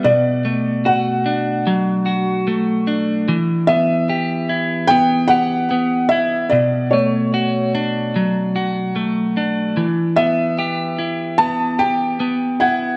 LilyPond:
<<
  \new Staff \with { instrumentName = "Felt piano" } { \time 4/4 \key e \minor \tempo 4 = 74 d''4 fis''2~ fis''8 r8 | r8 e''4. g''8 fis''4 e''8 | d''8 cis''4 r2 r8 | r8 e''4. a''8 g''4 fis''8 | }
  \new Staff \with { instrumentName = "Clean electric guitar" } { \time 4/4 \key e \minor b,8 a8 fis'8 d'8 fis8 fis'8 a8 d'8 | e8 b8 g'8 e'8 b8 g'8 b8 e'8 | b,8 a8 fis'8 d'8 fis8 fis'8 a8 d'8 | e8 b8 g'8 e'8 b8 g'8 b8 e'8 | }
>>